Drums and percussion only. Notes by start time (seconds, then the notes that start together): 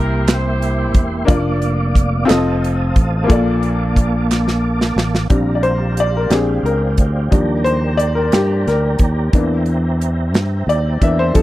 0.28 snare, clap, closed hi-hat
0.62 closed hi-hat
0.94 kick, closed hi-hat
1.28 kick, closed hi-hat
1.62 closed hi-hat
1.95 kick, closed hi-hat
2.30 snare, clap, closed hi-hat
2.64 closed hi-hat
2.96 kick, closed hi-hat
3.30 kick, closed hi-hat
3.63 closed hi-hat
3.96 kick, closed hi-hat
4.32 snare, clap
4.48 snare
4.81 snare
4.98 snare
5.15 snare
5.30 kick, closed hi-hat
5.63 closed hi-hat
5.97 closed hi-hat
6.30 snare, closed hi-hat
6.66 closed hi-hat
6.97 kick, closed hi-hat
7.32 kick, closed hi-hat
7.66 closed hi-hat
7.99 closed hi-hat
8.32 snare, closed hi-hat
8.68 snare, closed hi-hat
8.99 kick, closed hi-hat
9.33 kick, closed hi-hat
9.66 closed hi-hat
10.01 closed hi-hat
10.34 snare, closed hi-hat
10.70 closed hi-hat
11.02 kick, closed hi-hat
11.35 kick, closed hi-hat